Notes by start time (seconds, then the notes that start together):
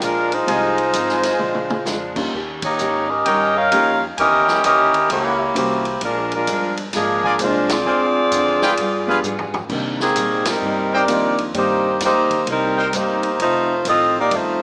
0.00 A#1 A#2 F3 G#3 D4 F4 A#4, hi-hat pedal, ride
0.32 G#3 D#4 F4 C5, ride
0.46 C2 F2 D#3 F3 G#3 C4 D#4 F4 G4 C5 D#5 G#5, ride
0.78 ride
0.93 G#1 F2 D#3 G#3 C4, hi-hat pedal, ride
1.09 snare
1.23 snare, ride
1.39 A#1 A#2 F3 G#3 D4, mid tom
1.54 mid tom
1.70 mid tom
1.85 F2 A#2 F3 G#3 D4, snare, hi-hat pedal
2.15 G3 A#3 C#4 D#4 F4, kick, crash
2.33 D#2 D#3 A#3 C#4 G4
2.62 A#3 D#4 G4 C#5, kick, ride
2.79 G#2 D#3 A#3 C#4 G4, hi-hat pedal
3.09 C#4 G4 A#4 D#5
3.25 G2 D#3 A#3 C#4 D#4 G4 A#4 C#5 G5, ride
3.56 D#4 A#4 C#5 F5
3.71 F2 D#3 G3 A#3 C#4 D#4 F4 G4 A#4 C#5 G5, hi-hat pedal, ride
4.17 E2 E3 A#3 C#4 E4 G4 A#4 C#5 D#5 G5, ride
4.48 snare
4.64 D#2 E3 A#3 C#4 G4 A#4 D#5, hi-hat pedal, ride
4.94 ride
5.10 C#2 E3 A#3 C#4 E4 G4 C#5, ride
5.54 C2 E3 G3 A#3 C#4 E4 F#4 G4 C5, hi-hat pedal, ride
5.85 ride
6.01 A#1 A#2 F3 G#3 D4 F4 A#4, ride
6.32 G#3 D4 F4 A#4, ride
6.47 G1 A#2 F3 G#3 D4, hi-hat pedal, ride
6.77 ride
6.93 G#1 A#2 F3 G#3 A#3 D4 G#4, snare, ride
7.24 F4 A#4 D5 G#5, kick
7.39 C2 A#2 F3 G#3 A#3 C4 D4 F4 C5, hi-hat pedal, ride
7.43 D4
7.69 C4 F4 G#4 D5, snare, ride
7.85 D2 D3 G#3 C4 F4 C5 D5 G#5
8.31 F2 D3 G#3 C4, hi-hat pedal, ride
8.35 F4
8.62 F4 G#4 B4 G5, snare
8.77 G2 G3 B3 F4 G#4, ride
9.07 F3 G#3 B3 D4 F4 G4 G#4 B4 F5
9.23 G#2 G3 B3 F4 G#4, hi-hat pedal
9.39 floor tom
9.54 floor tom
9.69 C3 D#3 G3 A#3 C4 D4 D#4 G4, kick, crash
10.00 D#3 A#3 C4 G#4, snare
10.14 A#2 C3 G3 A#3 D#4, hi-hat pedal, ride
10.45 G3 C4 D#4, snare, ride
10.50 A#4
10.61 G2 C3 G3 A#3 D#4
10.93 C4 D#4 G4 A#4 C5 D5 G5
11.07 F2 C3 D#3 G3 A#3 C4 D4 D#4 F4, hi-hat pedal, ride
11.38 ride
11.54 G2 C3 D#3 G3 A#3 C4 D#4 G4 C5 D5, ride
11.99 D#2 C3 G3 A#3 D#4, snare, hi-hat pedal, ride
12.04 A#3 D#4 G4 C5
12.31 kick, ride
12.46 C2 C3 G3 A#3 D#4, ride
12.51 G3 C4 D#4 A#4
12.77 D#4 A#4 C5 G5
12.93 G1 C3 G3 A#3 D#4 G4 C5, hi-hat pedal, ride
13.23 ride
13.39 F1 F2 D#3 A3 C4 D#4, ride
13.43 A3 F4 C5
13.85 A1 F2 D#3 A3 C4 F4 A4 D#5, hi-hat pedal, ride
13.89 C4
14.20 A#3 D#4 G4 D5
14.30 G1 F2 D#3 A3 C4, ride
14.35 A3 D#4 F4 C5